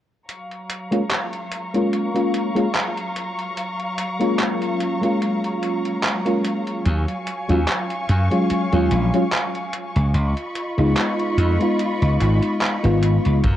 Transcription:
0.28 10.11 F#3 medium
0.28 6.82 F5 medium
0.28 6.82 A#5 medium
0.28 6.82 C#6 medium
0.28 closed hi-hat medium
0.51 closed hi-hat soft
0.70 closed hi-hat medium
0.91 1.02 G#3 medium
0.91 1.02 A#3 medium
0.91 1.02 C#4 medium
0.91 1.02 F4 medium
0.91 closed hi-hat soft
1.11 clap loud
1.11 closed hi-hat medium
1.33 closed hi-hat soft
1.52 closed hi-hat medium
1.74 2.10 G#3 medium
1.74 2.10 A#3 medium
1.74 2.10 C#4 medium
1.74 2.11 F4 medium
1.74 closed hi-hat soft
1.93 closed hi-hat medium
2.14 2.51 G#3 medium
2.14 2.51 A#3 medium
2.14 2.51 C#4 medium
2.14 2.51 F4 medium
2.14 closed hi-hat soft
2.34 closed hi-hat medium
2.55 2.66 G#3 medium
2.55 2.66 A#3 medium
2.55 2.66 C#4 medium
2.55 2.67 F4 medium
2.55 closed hi-hat soft
2.75 clap loud
2.75 closed hi-hat medium
2.98 closed hi-hat soft
3.16 closed hi-hat loud
3.39 closed hi-hat soft
3.57 closed hi-hat medium
3.80 closed hi-hat soft
3.98 closed hi-hat medium
4.20 4.97 G#3 medium
4.20 4.97 A#3 medium
4.20 4.98 C#4 medium
4.20 4.98 F4 medium
4.20 closed hi-hat soft
4.39 clap loud
4.39 closed hi-hat medium
4.62 closed hi-hat soft
4.81 closed hi-hat medium
5.01 6.20 G#3 medium
5.01 6.21 A#3 medium
5.01 6.21 C#4 medium
5.01 6.22 F4 medium
5.01 closed hi-hat soft
5.22 closed hi-hat medium
5.44 closed hi-hat soft
5.63 closed hi-hat medium
5.85 closed hi-hat soft
6.03 clap loud
6.03 closed hi-hat medium
6.25 6.83 G#3 medium
6.25 6.84 A#3 medium
6.25 6.84 C#4 medium
6.25 6.84 F4 medium
6.25 closed hi-hat soft
6.45 closed hi-hat medium
6.67 closed hi-hat soft
6.86 7.05 D#2 medium
6.86 10.12 F5 medium
6.86 10.11 G#5 medium
6.86 10.12 C#6 medium
6.86 closed hi-hat medium
7.08 closed hi-hat soft
7.27 closed hi-hat medium
7.49 7.65 D#2 medium
7.49 7.59 F#3 medium
7.49 7.59 G#3 medium
7.49 7.59 C#4 medium
7.49 7.60 F4 medium
7.49 closed hi-hat soft
7.68 clap loud
7.68 closed hi-hat medium
7.90 closed hi-hat soft
8.09 8.28 F#2 medium
8.09 closed hi-hat medium
8.31 8.67 F#3 medium
8.31 8.67 G#3 medium
8.31 8.67 C#4 medium
8.31 8.68 F4 loud
8.31 closed hi-hat soft
8.50 muted slap bass stroke soft
8.50 closed hi-hat medium
8.72 8.88 D#2 loud
8.72 9.08 F#3 medium
8.72 9.08 G#3 medium
8.72 9.09 C#4 medium
8.72 9.09 F4 medium
8.72 closed hi-hat soft
8.91 9.10 A#1 medium
8.91 closed hi-hat loud
9.13 9.24 F#3 medium
9.13 9.24 G#3 medium
9.13 9.24 C#4 medium
9.13 9.24 F4 loud
9.13 closed hi-hat soft
9.32 clap loud
9.32 closed hi-hat medium
9.55 closed hi-hat soft
9.73 closed hi-hat medium
9.96 10.11 C#2 medium
9.96 closed hi-hat soft
10.14 10.33 C#2 loud
10.14 13.40 F4 medium
10.14 13.40 D#5 medium
10.14 13.40 B5 medium
10.14 13.40 C#6 medium
10.14 closed hi-hat medium
10.37 closed hi-hat soft
10.56 closed hi-hat medium
10.78 10.94 C#2 medium
10.78 11.55 G#3 medium
10.78 11.55 B3 medium
10.78 11.55 D#4 medium
10.78 11.56 F4 medium
10.78 closed hi-hat soft
10.97 clap loud
10.97 closed hi-hat medium
11.20 closed hi-hat soft
11.38 11.56 F2 loud
11.38 closed hi-hat medium
11.59 12.78 G#3 medium
11.59 12.78 B3 medium
11.59 12.79 D#4 medium
11.59 12.79 F4 medium
11.59 closed hi-hat soft
11.79 closed hi-hat medium
12.02 12.17 C#2 medium
12.02 closed hi-hat soft
12.20 12.39 G#1 medium
12.20 closed hi-hat medium
12.43 closed hi-hat soft
12.61 clap loud
12.61 closed hi-hat medium
12.83 13.17 G#1 medium
12.83 13.41 G#3 medium
12.83 13.41 B3 medium
12.83 13.42 D#4 medium
12.83 13.42 F4 medium
12.83 closed hi-hat soft
13.03 closed hi-hat medium
13.25 13.41 C#2 medium
13.25 closed hi-hat soft
13.44 13.57 F#2 loud
13.44 13.57 F#3 medium
13.44 13.57 F5 medium
13.44 13.57 A#5 medium
13.44 13.57 C#6 medium
13.44 kick loud
13.44 closed hi-hat medium

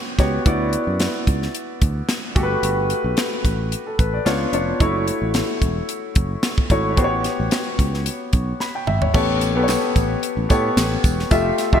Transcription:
0.00 0.18 B3 medium
0.00 0.19 F#4 medium
0.00 0.19 G4 medium
0.00 0.19 C#5 medium
0.18 0.37 C#2 medium
0.18 0.41 B3 medium
0.18 0.42 F#4 medium
0.18 0.42 G4 medium
0.18 0.42 C#5 medium
0.18 kick medium
0.18 snare soft
0.18 closed hi-hat medium
0.46 0.75 D2 medium
0.46 1.36 B3 medium
0.46 1.36 E4 medium
0.46 1.36 F#4 medium
0.46 1.36 D5 medium
0.46 kick loud
0.46 closed hi-hat medium
0.73 closed hi-hat medium
0.87 1.06 F#2 medium
1.00 snare loud
1.00 closed hi-hat medium
1.27 1.46 C#2 medium
1.27 kick medium
1.27 closed hi-hat medium
1.42 snare soft
1.55 closed hi-hat medium
1.82 2.01 D2 medium
1.82 kick medium
1.82 closed hi-hat medium
2.09 snare loud
2.09 closed hi-hat medium
2.35 2.55 G1 medium
2.35 3.26 A3 medium
2.35 3.26 F#4 medium
2.35 3.26 G4 medium
2.35 2.43 A4 medium
2.35 kick loud
2.35 closed hi-hat medium
2.43 3.29 B4 medium
2.63 2.92 G1 medium
2.63 closed hi-hat medium
2.90 closed hi-hat medium
3.04 3.13 B1 medium
3.17 snare loud
3.17 closed hi-hat medium
3.44 3.73 A1 medium
3.44 kick medium
3.44 closed hi-hat medium
3.72 closed hi-hat medium
3.86 3.98 A4 medium
3.99 4.18 A1 medium
3.99 4.13 B4 medium
3.99 kick medium
3.99 closed hi-hat medium
4.14 4.39 D5 medium
4.25 4.45 C#2 medium
4.25 4.48 B3 medium
4.25 4.49 D4 medium
4.25 4.49 F4 medium
4.25 4.49 C#5 medium
4.25 snare loud
4.25 closed hi-hat medium
4.53 4.72 F1 medium
4.53 4.76 B3 medium
4.53 4.76 D4 medium
4.53 4.76 F4 medium
4.53 4.76 C#5 medium
4.53 closed hi-hat medium
4.80 5.09 F#1 medium
4.80 5.70 A3 medium
4.80 5.70 E4 medium
4.80 5.70 F#4 medium
4.80 5.70 C#5 medium
4.80 kick loud
4.80 closed hi-hat medium
5.08 closed hi-hat medium
5.22 5.41 A1 medium
5.34 snare loud
5.34 closed hi-hat medium
5.61 5.80 E1 medium
5.61 kick medium
5.61 closed hi-hat medium
5.89 closed hi-hat medium
6.15 6.35 F#1 medium
6.15 kick medium
6.15 closed hi-hat medium
6.43 snare loud
6.43 closed hi-hat medium
6.58 kick medium
6.70 6.97 G#1 medium
6.70 6.93 A3 medium
6.70 6.93 E4 medium
6.70 6.93 F#4 medium
6.70 6.93 C#5 medium
6.70 kick medium
6.70 closed hi-hat medium
6.97 7.26 A1 medium
6.97 7.87 B3 medium
6.97 7.87 F#4 medium
6.97 7.87 G4 medium
6.97 7.05 C5 medium
6.97 kick loud
6.97 closed hi-hat medium
7.04 7.91 C#5 medium
7.24 snare soft
7.24 closed hi-hat medium
7.40 7.48 A1 medium
7.51 snare loud
7.51 closed hi-hat medium
7.79 8.08 C#2 medium
7.79 kick medium
7.79 closed hi-hat medium
7.94 snare soft
8.06 closed hi-hat medium
8.33 8.52 B1 medium
8.33 kick medium
8.33 closed hi-hat medium
8.60 8.74 B5 medium
8.60 snare soft
8.75 8.87 G5 medium
8.87 9.06 G#1 medium
8.87 9.01 E5 medium
8.87 mid tom medium
9.02 9.13 C#5 medium
9.02 floor tom medium
9.14 9.56 A1 medium
9.14 9.48 B3 medium
9.14 9.48 G4 medium
9.14 9.48 A4 medium
9.14 9.48 C#5 medium
9.14 kick loud
9.14 crash medium
9.14 tambourine soft
9.41 closed hi-hat medium
9.41 tambourine soft
9.55 9.75 B1 medium
9.55 10.34 B3 medium
9.55 10.34 G4 medium
9.55 10.34 A4 medium
9.55 9.62 B4 medium
9.63 10.38 C#5 medium
9.68 snare loud
9.68 closed hi-hat medium
9.68 tambourine medium
9.96 10.15 A1 medium
9.96 kick medium
9.96 closed hi-hat medium
9.96 tambourine soft
10.23 closed hi-hat medium
10.37 10.46 A1 medium
10.49 10.69 A2 medium
10.49 11.18 B3 medium
10.49 11.18 G4 medium
10.49 11.18 A4 medium
10.49 11.18 C#5 medium
10.49 kick medium
10.49 closed hi-hat medium
10.49 tambourine soft
10.77 10.96 A1 medium
10.77 snare loud
10.77 closed hi-hat medium
10.77 tambourine medium
11.04 11.23 E1 medium
11.04 kick medium
11.04 closed hi-hat medium
11.04 tambourine medium
11.19 snare soft
11.31 11.50 F1 medium
11.31 11.65 A3 medium
11.31 11.65 F4 medium
11.31 11.65 G4 medium
11.31 11.66 E5 medium
11.31 kick loud
11.31 closed hi-hat medium
11.31 tambourine soft
11.58 snare soft
11.58 closed hi-hat medium
11.58 tambourine soft
11.73 11.80 F1 medium
11.73 11.79 G#3 medium
11.73 11.80 F4 medium
11.73 11.80 G4 medium
11.73 11.80 E5 medium
11.73 kick medium

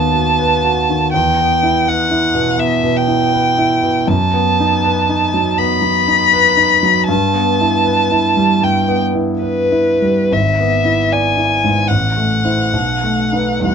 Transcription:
0.00 1.16 D#2 soft
0.00 0.90 D#3 soft
0.00 1.17 B3 soft
0.00 0.15 F#4 soft
0.00 0.39 B4 soft
0.00 1.12 A5 medium
0.15 0.54 F#4 soft
0.39 0.79 B4 soft
0.64 1.04 F#4 soft
0.90 1.15 D#3 soft
1.13 2.56 E2 soft
1.13 1.89 G5 medium
1.41 1.79 B3 soft
1.63 2.02 E4 soft
1.88 2.26 B4 soft
1.88 2.61 F#5 medium
2.11 2.50 E4 soft
2.34 2.74 B2 soft
2.58 2.98 B3 soft
2.58 2.98 E5 medium
2.84 3.23 B2 soft
2.96 4.09 G5 medium
3.08 3.47 E4 soft
3.34 3.73 B4 soft
3.58 3.98 E4 soft
3.83 4.08 B2 soft
4.07 5.55 F#2 soft
4.07 5.60 A5 medium
4.34 4.75 B3 soft
4.60 5.00 D#4 soft
4.84 5.24 B4 soft
5.09 5.49 D#4 soft
5.34 5.73 F#3 soft
5.58 5.98 B3 soft
5.58 7.08 B5 medium
5.82 6.22 F#3 soft
6.08 6.48 D#4 soft
6.33 6.74 B4 soft
6.57 6.99 D#4 soft
6.83 7.09 F#3 soft
7.08 8.58 G2 soft
7.08 8.65 A5 medium
7.34 7.76 B3 soft
7.60 8.02 E4 soft
7.85 8.27 B4 soft
8.11 8.52 E4 soft
8.37 8.78 G3 soft
8.62 10.28 G2 soft
8.62 9.02 G5 soft
8.88 9.31 B3 soft
9.15 9.60 E4 soft
9.42 9.90 B4 soft
9.42 10.34 B4 soft
9.72 10.20 E4 soft
10.02 10.32 G3 soft
10.32 11.85 G#1 soft
10.32 11.14 E5 medium
10.60 11.02 B3 soft
10.85 11.27 E4 soft
11.12 11.53 D5 soft
11.12 11.89 G#5 soft
11.37 11.79 E4 soft
11.64 11.90 G#2 soft
11.88 12.70 A1 soft
11.88 13.64 F#5 soft
12.17 12.61 A3 soft
12.45 12.70 E4 soft
12.45 12.70 C5 soft
12.73 13.62 B1 soft
13.03 13.53 A3 soft
13.32 13.61 D#4 soft
13.32 13.62 B4 soft
13.60 13.75 E2 soft
13.60 13.75 G3 soft
13.60 13.75 E4 soft
13.60 13.75 B4 soft
13.65 13.75 F#5 soft

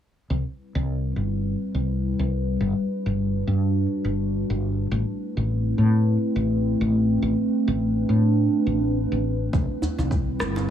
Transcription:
0.30 0.42 C2 medium
0.30 4.88 G3 medium
0.30 2.59 C4 medium
0.30 2.59 E4 medium
0.30 4.88 B4 medium
0.75 1.11 C2 medium
1.16 1.55 G1 medium
1.75 2.13 C2 medium
2.19 2.55 C2 medium
2.61 2.73 G1 medium
2.61 4.89 D4 medium
2.61 4.90 F#4 medium
3.06 3.42 G1 medium
3.47 3.85 G2 medium
4.04 4.43 G1 medium
4.50 4.86 G1 medium
4.91 5.03 A1 medium
4.91 9.49 A3 medium
4.91 9.49 C4 medium
4.91 7.20 E4 medium
4.91 10.70 B4 medium
5.37 5.73 A1 medium
5.78 6.16 A2 medium
6.36 6.74 A1 medium
6.81 7.17 A1 medium
7.22 7.34 A1 medium
7.22 9.51 D4 medium
7.68 8.04 A1 medium
8.09 8.47 A2 medium
8.67 9.05 A1 medium
9.12 9.48 A1 medium
9.52 9.65 C2 medium
9.52 10.70 G3 medium
9.52 10.70 C4 medium
9.52 10.70 E4 medium
9.52 kick medium
9.52 shaker soft
9.82 djembe bass medium
9.82 shaker medium
9.98 10.34 C2 medium
9.98 djembe tone medium
9.98 shaker soft
10.11 kick medium
10.11 shaker soft
10.39 10.70 G1 medium
10.39 cross-stick medium
10.39 djembe tone medium
10.39 shaker medium
10.56 djembe slap medium
10.56 shaker soft

